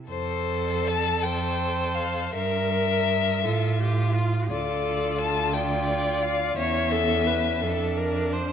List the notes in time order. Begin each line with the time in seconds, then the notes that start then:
0.09 F2 A4 C5
0.88 A5
1.22 C5 G5
1.95 F5
2.34 G2 A#4 E5
3.44 A2 F4 A4
3.80 G4
4.15 F4
4.51 D2 F4 A4 D5
5.19 A5
5.53 D5 G5
6.22 F5
6.57 E2 C#4 C#5 E5
6.92 A4
7.27 B4
7.62 F2 D4 A4
7.97 A#4
8.33 C5